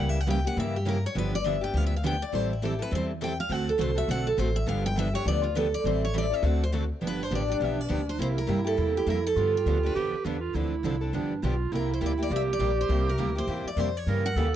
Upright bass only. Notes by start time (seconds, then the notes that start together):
Already playing: C#2
0.57 G2
1.15 G1
1.74 D2
2.33 A1
2.92 E2
3.50 D2
3.79 C2
4.08 B1
4.38 A1
4.67 G1
5.26 D2
5.84 A1
6.43 D2
7.02 G1
7.31 A1
7.60 B1
7.89 D2
8.19 C2
8.48 G2
8.78 E2
9.06 F2
9.36 G2
9.66 D2
9.96 F2
10.13 muted upright bass stroke
10.25 E2
10.54 D2
10.84 C2
11.13 G1
11.43 B1
11.72 C2
12.01 D2
12.30 C2
12.59 A#1
12.89 C2
13.18 D2
13.47 E2
13.65 muted upright bass stroke
13.76 F2
14.07 G2
14.35 D#2